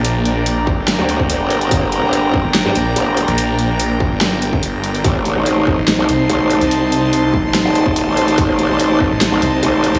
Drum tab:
HH |x-x-x---x-x-x-xx|x-x-x---x-x-x-xx|x-x-x---x-x-x-xx|x-x-x---x-x-x-xx|
SD |--------o-------|--------o-------|--------o-------|--------o-------|
BD |------o----o----|o-----o---------|------o----o----|o-----o---------|

HH |x-x-x---x-x-x-xx|x-x-x---x-x-x-xx|
SD |--------o-------|--------o-------|
BD |------o----o----|o-----o---------|